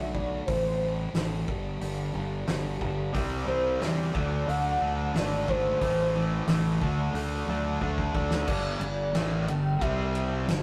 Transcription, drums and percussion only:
0.15 kick
0.48 kick, open hi-hat
1.15 snare, open hi-hat
1.48 kick
1.81 open hi-hat
2.47 snare, open hi-hat
2.81 kick
3.15 kick, open hi-hat
3.81 snare, open hi-hat
4.15 kick
4.49 open hi-hat
5.16 snare, open hi-hat
5.48 kick
5.81 kick, open hi-hat
6.48 snare, open hi-hat
6.82 kick
7.15 open hi-hat
7.81 kick
7.98 kick
8.15 kick
8.31 snare
8.47 kick, crash
8.81 ride
9.15 snare, ride
9.48 ride
9.81 kick, ride
10.15 ride
10.48 snare, ride

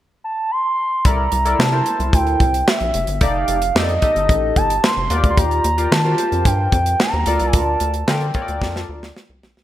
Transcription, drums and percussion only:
1.05 kick, closed hi-hat
1.32 closed hi-hat
1.46 closed hi-hat
1.60 snare, clap
1.86 closed hi-hat
2.00 closed hi-hat
2.13 kick, closed hi-hat
2.27 closed hi-hat
2.40 kick, closed hi-hat
2.54 closed hi-hat
2.68 snare, clap
2.80 closed hi-hat
2.94 closed hi-hat
3.07 closed hi-hat
3.21 kick, closed hi-hat
3.48 closed hi-hat
3.62 closed hi-hat
3.76 snare, clap
3.89 closed hi-hat
4.02 kick, closed hi-hat
4.16 closed hi-hat
4.29 kick, closed hi-hat
4.56 kick, closed hi-hat
4.70 closed hi-hat
4.84 snare, clap
5.10 closed hi-hat
5.24 kick, closed hi-hat
5.37 kick, closed hi-hat
5.51 closed hi-hat
5.64 closed hi-hat
5.78 closed hi-hat
5.92 snare, clap
6.18 closed hi-hat
6.32 closed hi-hat
6.45 kick, closed hi-hat
6.72 kick, closed hi-hat
6.86 closed hi-hat
7.00 snare, clap
7.26 closed hi-hat
7.40 closed hi-hat
7.53 kick, closed hi-hat
7.80 closed hi-hat
7.94 closed hi-hat
8.08 snare, clap
8.21 closed hi-hat
8.34 kick, closed hi-hat
8.48 closed hi-hat
8.62 kick, snare
8.76 snare
9.03 snare
9.16 snare
9.43 snare
9.57 snare

